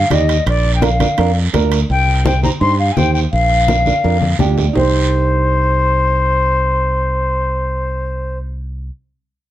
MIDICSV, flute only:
0, 0, Header, 1, 2, 480
1, 0, Start_track
1, 0, Key_signature, -3, "minor"
1, 0, Tempo, 357782
1, 621, Time_signature, 4, 2, 24, 8
1, 12755, End_track
2, 0, Start_track
2, 0, Title_t, "Flute"
2, 0, Program_c, 0, 73
2, 165, Note_on_c, 0, 75, 90
2, 600, Note_off_c, 0, 75, 0
2, 654, Note_on_c, 0, 74, 96
2, 998, Note_off_c, 0, 74, 0
2, 1008, Note_on_c, 0, 79, 57
2, 1115, Note_on_c, 0, 77, 72
2, 1135, Note_off_c, 0, 79, 0
2, 1828, Note_off_c, 0, 77, 0
2, 2558, Note_on_c, 0, 79, 98
2, 2997, Note_off_c, 0, 79, 0
2, 3032, Note_on_c, 0, 79, 77
2, 3250, Note_off_c, 0, 79, 0
2, 3270, Note_on_c, 0, 82, 86
2, 3351, Note_off_c, 0, 82, 0
2, 3496, Note_on_c, 0, 84, 95
2, 3722, Note_off_c, 0, 84, 0
2, 3745, Note_on_c, 0, 77, 79
2, 3919, Note_on_c, 0, 80, 66
2, 3939, Note_off_c, 0, 77, 0
2, 3974, Note_on_c, 0, 79, 86
2, 3994, Note_off_c, 0, 80, 0
2, 4203, Note_off_c, 0, 79, 0
2, 4211, Note_on_c, 0, 79, 71
2, 4291, Note_off_c, 0, 79, 0
2, 4455, Note_on_c, 0, 77, 89
2, 5845, Note_off_c, 0, 77, 0
2, 6381, Note_on_c, 0, 72, 81
2, 11243, Note_off_c, 0, 72, 0
2, 12755, End_track
0, 0, End_of_file